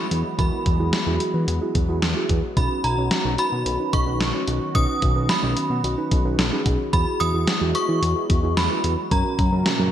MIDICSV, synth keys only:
0, 0, Header, 1, 2, 480
1, 0, Start_track
1, 0, Key_signature, 5, "major"
1, 0, Tempo, 545455
1, 341, Time_signature, 4, 2, 24, 8
1, 8727, End_track
2, 0, Start_track
2, 0, Title_t, "Synth keys"
2, 0, Program_c, 0, 88
2, 0, Note_on_c, 0, 64, 71
2, 0, Note_on_c, 0, 66, 62
2, 0, Note_on_c, 0, 68, 76
2, 190, Note_off_c, 0, 64, 0
2, 190, Note_off_c, 0, 66, 0
2, 190, Note_off_c, 0, 68, 0
2, 341, Note_on_c, 0, 64, 69
2, 341, Note_on_c, 0, 70, 79
2, 342, Note_on_c, 0, 66, 64
2, 551, Note_off_c, 0, 64, 0
2, 551, Note_off_c, 0, 66, 0
2, 551, Note_off_c, 0, 70, 0
2, 700, Note_on_c, 0, 64, 71
2, 701, Note_on_c, 0, 66, 62
2, 701, Note_on_c, 0, 68, 76
2, 840, Note_off_c, 0, 64, 0
2, 841, Note_off_c, 0, 66, 0
2, 841, Note_off_c, 0, 68, 0
2, 941, Note_on_c, 0, 64, 83
2, 941, Note_on_c, 0, 66, 76
2, 941, Note_on_c, 0, 68, 96
2, 1221, Note_off_c, 0, 64, 0
2, 1221, Note_off_c, 0, 66, 0
2, 1221, Note_off_c, 0, 68, 0
2, 1420, Note_on_c, 0, 64, 81
2, 1420, Note_on_c, 0, 66, 73
2, 1420, Note_on_c, 0, 68, 93
2, 1560, Note_off_c, 0, 64, 0
2, 1560, Note_off_c, 0, 66, 0
2, 1561, Note_off_c, 0, 68, 0
2, 1660, Note_on_c, 0, 64, 86
2, 1660, Note_on_c, 0, 66, 75
2, 1660, Note_on_c, 0, 68, 93
2, 1800, Note_off_c, 0, 64, 0
2, 1800, Note_off_c, 0, 66, 0
2, 1800, Note_off_c, 0, 68, 0
2, 1899, Note_on_c, 0, 66, 76
2, 1900, Note_on_c, 0, 64, 82
2, 1900, Note_on_c, 0, 68, 90
2, 2110, Note_off_c, 0, 64, 0
2, 2110, Note_off_c, 0, 66, 0
2, 2110, Note_off_c, 0, 68, 0
2, 2260, Note_on_c, 0, 61, 71
2, 2260, Note_on_c, 0, 63, 66
2, 2260, Note_on_c, 0, 71, 79
2, 2470, Note_off_c, 0, 61, 0
2, 2470, Note_off_c, 0, 63, 0
2, 2470, Note_off_c, 0, 71, 0
2, 2621, Note_on_c, 0, 61, 72
2, 2621, Note_on_c, 0, 63, 65
2, 2622, Note_on_c, 0, 73, 75
2, 2761, Note_off_c, 0, 61, 0
2, 2761, Note_off_c, 0, 63, 0
2, 2761, Note_off_c, 0, 73, 0
2, 2861, Note_on_c, 0, 63, 66
2, 2862, Note_on_c, 0, 61, 72
2, 2862, Note_on_c, 0, 71, 79
2, 3141, Note_off_c, 0, 61, 0
2, 3141, Note_off_c, 0, 63, 0
2, 3141, Note_off_c, 0, 71, 0
2, 3340, Note_on_c, 0, 61, 67
2, 3340, Note_on_c, 0, 63, 64
2, 3340, Note_on_c, 0, 71, 74
2, 3480, Note_off_c, 0, 61, 0
2, 3480, Note_off_c, 0, 63, 0
2, 3480, Note_off_c, 0, 71, 0
2, 3579, Note_on_c, 0, 61, 69
2, 3580, Note_on_c, 0, 63, 64
2, 3580, Note_on_c, 0, 71, 77
2, 3720, Note_off_c, 0, 61, 0
2, 3720, Note_off_c, 0, 63, 0
2, 3720, Note_off_c, 0, 71, 0
2, 3819, Note_on_c, 0, 61, 69
2, 3819, Note_on_c, 0, 63, 64
2, 3819, Note_on_c, 0, 73, 76
2, 4030, Note_off_c, 0, 61, 0
2, 4030, Note_off_c, 0, 63, 0
2, 4030, Note_off_c, 0, 73, 0
2, 4179, Note_on_c, 0, 61, 74
2, 4179, Note_on_c, 0, 63, 66
2, 4179, Note_on_c, 0, 71, 81
2, 4390, Note_off_c, 0, 61, 0
2, 4390, Note_off_c, 0, 63, 0
2, 4390, Note_off_c, 0, 71, 0
2, 4540, Note_on_c, 0, 61, 68
2, 4540, Note_on_c, 0, 63, 62
2, 4540, Note_on_c, 0, 71, 79
2, 4680, Note_off_c, 0, 61, 0
2, 4680, Note_off_c, 0, 63, 0
2, 4680, Note_off_c, 0, 71, 0
2, 4780, Note_on_c, 0, 61, 70
2, 4780, Note_on_c, 0, 63, 65
2, 4780, Note_on_c, 0, 71, 82
2, 5061, Note_off_c, 0, 61, 0
2, 5061, Note_off_c, 0, 63, 0
2, 5061, Note_off_c, 0, 71, 0
2, 5261, Note_on_c, 0, 61, 83
2, 5261, Note_on_c, 0, 63, 78
2, 5261, Note_on_c, 0, 71, 90
2, 5401, Note_off_c, 0, 61, 0
2, 5401, Note_off_c, 0, 63, 0
2, 5401, Note_off_c, 0, 71, 0
2, 5500, Note_on_c, 0, 61, 85
2, 5500, Note_on_c, 0, 63, 79
2, 5500, Note_on_c, 0, 71, 96
2, 5640, Note_off_c, 0, 61, 0
2, 5640, Note_off_c, 0, 63, 0
2, 5641, Note_off_c, 0, 71, 0
2, 5739, Note_on_c, 0, 61, 82
2, 5739, Note_on_c, 0, 63, 76
2, 5739, Note_on_c, 0, 68, 93
2, 5950, Note_off_c, 0, 61, 0
2, 5950, Note_off_c, 0, 63, 0
2, 5950, Note_off_c, 0, 68, 0
2, 6099, Note_on_c, 0, 66, 66
2, 6099, Note_on_c, 0, 68, 81
2, 6100, Note_on_c, 0, 64, 73
2, 6310, Note_off_c, 0, 64, 0
2, 6310, Note_off_c, 0, 66, 0
2, 6310, Note_off_c, 0, 68, 0
2, 6459, Note_on_c, 0, 64, 74
2, 6459, Note_on_c, 0, 66, 65
2, 6460, Note_on_c, 0, 68, 80
2, 6600, Note_off_c, 0, 64, 0
2, 6600, Note_off_c, 0, 66, 0
2, 6600, Note_off_c, 0, 68, 0
2, 6700, Note_on_c, 0, 64, 73
2, 6700, Note_on_c, 0, 68, 82
2, 6701, Note_on_c, 0, 66, 67
2, 6980, Note_off_c, 0, 68, 0
2, 6981, Note_off_c, 0, 64, 0
2, 6981, Note_off_c, 0, 66, 0
2, 7179, Note_on_c, 0, 64, 69
2, 7179, Note_on_c, 0, 66, 65
2, 7179, Note_on_c, 0, 68, 81
2, 7320, Note_off_c, 0, 64, 0
2, 7320, Note_off_c, 0, 66, 0
2, 7320, Note_off_c, 0, 68, 0
2, 7419, Note_on_c, 0, 64, 71
2, 7419, Note_on_c, 0, 66, 63
2, 7419, Note_on_c, 0, 68, 78
2, 7560, Note_off_c, 0, 64, 0
2, 7560, Note_off_c, 0, 66, 0
2, 7560, Note_off_c, 0, 68, 0
2, 7658, Note_on_c, 0, 64, 70
2, 7658, Note_on_c, 0, 71, 80
2, 7659, Note_on_c, 0, 66, 65
2, 7869, Note_off_c, 0, 64, 0
2, 7870, Note_off_c, 0, 66, 0
2, 7870, Note_off_c, 0, 71, 0
2, 8020, Note_on_c, 0, 61, 72
2, 8020, Note_on_c, 0, 66, 67
2, 8021, Note_on_c, 0, 70, 79
2, 8230, Note_off_c, 0, 61, 0
2, 8231, Note_off_c, 0, 66, 0
2, 8231, Note_off_c, 0, 70, 0
2, 8379, Note_on_c, 0, 61, 70
2, 8379, Note_on_c, 0, 66, 68
2, 8379, Note_on_c, 0, 70, 77
2, 8520, Note_off_c, 0, 61, 0
2, 8520, Note_off_c, 0, 66, 0
2, 8520, Note_off_c, 0, 70, 0
2, 8620, Note_on_c, 0, 61, 85
2, 8620, Note_on_c, 0, 66, 80
2, 8620, Note_on_c, 0, 70, 96
2, 8727, Note_off_c, 0, 61, 0
2, 8727, Note_off_c, 0, 66, 0
2, 8727, Note_off_c, 0, 70, 0
2, 8727, End_track
0, 0, End_of_file